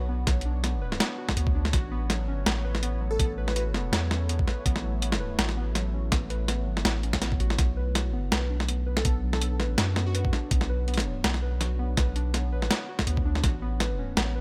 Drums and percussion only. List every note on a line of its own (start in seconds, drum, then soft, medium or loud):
0.27 kick loud
0.27 snare medium
0.27 closed hi-hat medium
0.41 closed hi-hat soft
0.64 snare medium
0.64 closed hi-hat medium
0.92 snare medium
1.00 snare loud
1.00 closed hi-hat medium
1.29 kick medium
1.29 snare medium
1.37 closed hi-hat medium
1.47 kick loud
1.65 snare medium
1.73 kick loud
1.73 snare medium
1.73 closed hi-hat medium
2.10 snare medium
2.10 closed hi-hat medium
2.46 snare loud
2.46 snare medium
2.46 closed hi-hat medium
2.75 snare medium
2.83 closed hi-hat medium
3.19 kick loud
3.19 closed hi-hat medium
3.48 snare medium
3.56 closed hi-hat medium
3.74 snare medium
3.93 snare loud
3.93 closed hi-hat medium
4.11 snare medium
4.29 closed hi-hat medium
4.39 kick loud
4.48 snare medium
4.66 kick loud
4.66 closed hi-hat medium
4.76 snare medium
5.02 closed hi-hat medium
5.12 snare medium
5.39 snare loud
5.39 closed hi-hat medium
5.49 snare medium
5.75 snare medium
5.75 closed hi-hat medium
6.12 kick loud
6.12 snare medium
6.12 closed hi-hat medium
6.30 closed hi-hat soft
6.48 snare medium
6.48 closed hi-hat medium
6.77 snare medium
6.85 snare loud
6.85 closed hi-hat medium
7.03 closed hi-hat soft
7.13 kick medium
7.13 snare medium
7.22 snare medium
7.22 closed hi-hat medium
7.32 kick loud
7.40 closed hi-hat soft
7.50 snare medium
7.59 kick loud
7.59 snare medium
7.59 closed hi-hat medium
7.95 snare medium
7.95 closed hi-hat medium
8.32 snare loud
8.32 snare medium
8.32 closed hi-hat medium
8.60 snare medium
8.68 closed hi-hat medium
8.97 snare medium
9.05 kick loud
9.05 closed hi-hat medium
9.33 snare medium
9.41 closed hi-hat medium
9.60 snare medium
9.78 snare loud
9.78 closed hi-hat medium
9.96 snare medium
10.15 closed hi-hat medium
10.25 kick loud
10.33 snare medium
10.51 kick loud
10.51 closed hi-hat medium
10.61 snare medium
10.88 closed hi-hat soft
10.94 snare medium
10.94 closed hi-hat soft
11.00 closed hi-hat medium
11.24 snare loud
11.24 closed hi-hat medium
11.34 snare medium
11.61 snare medium
11.61 closed hi-hat medium
11.97 kick loud
11.97 snare medium
11.97 closed hi-hat medium
12.16 closed hi-hat soft
12.34 snare medium
12.34 closed hi-hat medium
12.62 snare medium
12.71 snare loud
12.71 closed hi-hat medium
12.99 kick medium
12.99 snare medium
13.07 closed hi-hat medium
13.17 kick loud
13.35 snare medium
13.44 kick loud
13.44 snare medium
13.44 closed hi-hat medium
13.80 snare medium
13.80 closed hi-hat medium
14.17 snare loud
14.17 snare medium
14.17 closed hi-hat medium